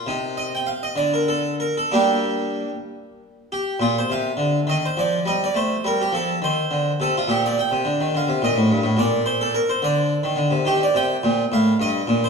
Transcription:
<<
  \new Staff \with { instrumentName = "Harpsichord" } { \time 6/8 \key g \minor \tempo 4. = 70 ees'8 ees''16 g''16 f''16 ees''16 d''16 bes'16 a'8 bes'16 a'16 | g'4. r4 g'8 | \key bes \major f'16 c''16 f''4 ees''16 c''16 d''8 ees''16 d''16 | c''8 bes'16 g'16 a'8 c''4 a'16 f'16 |
g'16 d''16 g''4 f''8 ees''4 | d''8 c''16 a'16 bes'16 c''16 d''4 r8 | \key g \minor g'16 d''16 g''4 f''8 ees''8. c''16 | }
  \new Staff \with { instrumentName = "Harpsichord" } { \clef bass \time 6/8 \key g \minor c4. d4. | <g bes d'>4. r4. | \key bes \major bes,8 c8 d8 ees8 f8 g8 | a8 g8 f8 ees8 d8 c8 |
bes,8. c16 d16 ees16 d16 c16 bes,16 a,16 g,16 a,16 | bes,4. d8. ees16 d16 c16 | \key g \minor ees8 c8 bes,8 a,8 g,8 bes,8 | }
>>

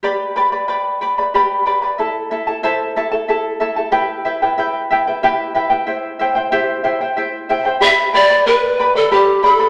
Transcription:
<<
  \new Staff \with { instrumentName = "Charango" } { \time 3/4 \key g \major \tempo 4 = 92 <g' b' d'' g'' b''>8 <b' d'' g'' b''>16 <b' d'' b''>16 <b' d'' g'' b''>8 <b' d'' g'' b''>16 <b' d'' b''>16 <g' b' d'' g'' b''>8 <b' d'' g'' b''>16 <b' d'' b''>16 | <e' a' e'' a''>8 <e' a' e'' a''>16 <e' a' a''>16 <e' a' c'' e'' a''>8 <e' a' e'' a''>16 <e' a' a''>16 <e' a' e'' a''>8 <e' a' e'' a''>16 <e' a' a''>16 | <e' g' b' e'' g''>8 <e' b' e'' g''>16 <e' b' g''>16 <e' b' e'' g''>8 <e' b' e'' g''>16 <e' b' g''>16 <e' g' b' e'' g''>8 <e' b' e'' g''>16 <e' b' g''>16 | <e' c'' e'' g''>8 <e' c'' e'' g''>16 <e' c'' g''>16 <e' g' c'' e'' g''>8 <e' c'' e'' g''>16 <e' c'' g''>16 <e' c'' e'' g''>8 <e' c'' e'' g''>16 <e' c'' g''>16 |
<g' b' d'' g'' b''>8 <b' d'' g'' b''>16 <b' d'' b''>16 <b' d'' g'' b''>8 <b' d'' g'' b''>16 <b' d'' b''>16 <g' b' d'' g'' b''>8 <b' d'' g'' b''>16 <b' d'' b''>16 | }
  \new Staff \with { instrumentName = "Pan flute" } { \time 3/4 \key g \major r2. | r2. | r2. | r2. |
e''8 d''8 b'8. a'16 g'8 a'8 | }
>>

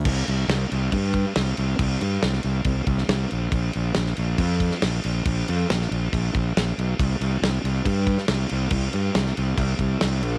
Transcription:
<<
  \new Staff \with { instrumentName = "Fingered electric bass" } { \clef bass \time 4/4 \key bes \lydian \tempo 4 = 139 c,8 c,8 c,8 c,8 g,4 c,8 c,8 | c,8 g,8 c,8 c,8 c,8 c,8 c,8 bes,,8 | bes,,8 bes,,8 bes,,8 bes,,8 f,4 bes,,8 bes,,8 | bes,,8 f,8 bes,,8 bes,,8 bes,,8 bes,,8 bes,,8 b,,8 |
c,8 c,8 c,8 c,8 g,4 c,8 c,8 | c,8 g,8 c,8 c,8 c,8 c,8 c,8 bes,,8 | }
  \new DrumStaff \with { instrumentName = "Drums" } \drummode { \time 4/4 <cymc bd>8 cymc8 <cymc sn>8 cymc8 <cymc bd>8 <cymc bd>8 <cymc sn>8 cymc8 | <cymc bd>8 cymc8 <cymc sn>16 sn16 cymc8 <cymc bd>8 <cymc bd>16 sn16 <cymc sn>8 cymc8 | <cymc bd>8 cymc8 <cymc sn>16 sn16 cymc8 <cymc bd>8 <cymc bd>16 sn16 <cymc sn>8 cymc8 | <cymc bd>8 cymc8 <cymc sn>16 sn16 cymc8 <cymc bd>8 <cymc bd>8 <cymc sn>8 cymc8 |
<cymc bd>8 cymc8 <cymc sn>8 cymc8 <cymc bd>8 <cymc bd>16 sn16 <cymc sn>8 cymc8 | <cymc bd>8 cymc8 <cymc sn>16 sn16 cymc8 <cymc bd>8 <cymc bd>8 <cymc sn>8 cymc8 | }
>>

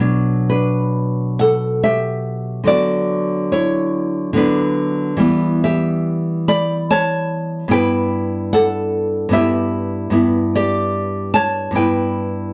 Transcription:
\new Staff \with { instrumentName = "Nylon-string guitar" } { \time 3/4 \key b \minor \tempo 4 = 72 << { r8 <d' b'>4 <a' fis''>8 <g' e''>4 | <fis' d''>4 <e' cis''>4 <d' b'>4 | r8 <g' e''>4 <d'' b''>8 <cis'' a''>4 | <b' g''>4 <a' fis''>4 <g' e''>4 |
\key e \dorian r8 <g' d''>4 <cis'' a''>8 <b' g''>4 | } \\ { <b, fis d'>2. | <d fis b>2 <d fis b>4 | <e g b>2. | <g, b e'>2 <g, b e'>4 |
<g, b e'>2 <g, b e'>4 | } >> }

